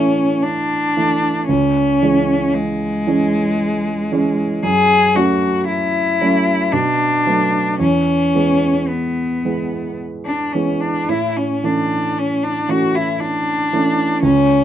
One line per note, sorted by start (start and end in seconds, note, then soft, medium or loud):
0.00 1.51 A2 soft
0.00 0.97 E3 soft
0.00 0.97 A3 soft
0.00 0.44 C#4 medium
0.00 0.97 E4 soft
0.43 1.46 D4 medium
0.97 1.45 E3 soft
0.97 1.45 A3 soft
0.97 1.46 E4 soft
1.47 2.00 C#2 soft
1.47 2.56 C#4 medium
2.02 3.03 E3 soft
2.02 3.03 G#3 soft
2.02 3.04 C#4 soft
2.54 4.64 G#3 medium
3.07 4.08 E3 soft
3.07 4.08 G#3 soft
3.07 4.08 C#4 soft
4.12 4.60 E3 soft
4.12 4.60 G#3 soft
4.12 4.60 C#4 soft
4.63 5.14 F#2 medium
4.63 5.17 G#4 medium
5.15 6.17 F#3 soft
5.15 6.17 A3 soft
5.15 6.17 C#4 soft
5.15 5.66 F#4 medium
5.67 6.74 E4 medium
6.21 6.70 F#3 soft
6.21 6.70 A3 soft
6.21 6.70 C#4 soft
6.73 7.25 B2 soft
6.73 7.79 D4 medium
7.27 7.76 F#3 soft
7.27 7.77 A3 soft
7.27 7.77 B3 soft
7.80 8.33 E2 soft
7.80 8.90 C#4 medium
8.34 9.40 E3 soft
8.34 9.40 G#3 soft
8.34 9.41 B3 soft
8.89 9.99 B3 medium
9.45 10.50 E3 soft
9.45 10.50 G#3 soft
9.45 10.50 B3 soft
10.26 10.54 D4 medium
10.52 11.05 E3 soft
10.52 11.05 G#3 soft
10.52 11.06 B3 soft
10.52 10.82 C#4 medium
10.80 11.11 D4 medium
11.09 11.62 A2 soft
11.09 11.38 E4 medium
11.37 11.66 C#4 medium
11.64 12.65 E3 soft
11.64 12.65 A3 soft
11.64 12.66 C#4 soft
11.64 12.20 D4 medium
12.18 12.45 C#4 medium
12.44 12.71 D4 medium
12.68 13.68 E3 soft
12.68 13.68 A3 soft
12.68 13.68 C#4 soft
12.68 12.97 F#4 medium
12.95 13.22 E4 medium
13.20 14.22 D4 medium
13.73 14.19 E3 soft
13.73 14.20 A3 soft
13.73 14.20 C#4 soft
14.23 14.64 C#2 medium
14.23 14.64 C#4 medium